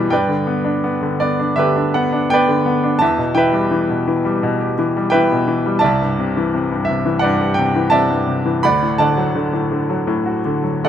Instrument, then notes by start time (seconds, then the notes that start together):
grand piano
Already playing: B2 E3 G3 E4 G4 B4 E5
0.10 G2 B4 D5 G5
0.28 D3
0.47 B3
0.64 D4
0.84 B3
1.02 D3
1.20 B3 D5
1.39 D4
1.56 D3 G4 B4 E5
1.76 D4
1.94 B3 F#5
2.13 D4
2.30 B3 B4 D5 G5
2.49 D3
2.66 B3
2.84 D4
2.99 E2 E5 A5
3.18 B2
3.35 E3 B4 E5 G5
3.53 G3
3.71 E3
3.89 B2
4.08 E3
4.25 G3
4.43 B2
4.60 G4
4.79 E3
4.97 G3
5.10 B4 E5 G5
5.14 E3
5.32 B2
5.48 E3
5.66 G3
5.79 D5 E5 A5
5.84 C2
6.02 G2
6.19 C3
6.37 E3
6.54 C3
6.72 G2
6.85 E5
6.89 C3
7.06 E3
7.19 D5 F#5
7.24 G2
7.41 G4
7.54 C3 G5
7.76 E3
7.90 C3 D5 E5 A5
8.10 G2
8.27 C3
8.46 E3
8.63 D2 D5 F#5 B5
8.82 A2
8.98 D3 D5 F#5 A5
9.17 F#3
9.35 D3
9.53 A2
9.72 D3
9.90 F#3
10.07 A2
10.26 F#4
10.45 D3
10.63 F#3
10.84 D3 A4 D5 F#5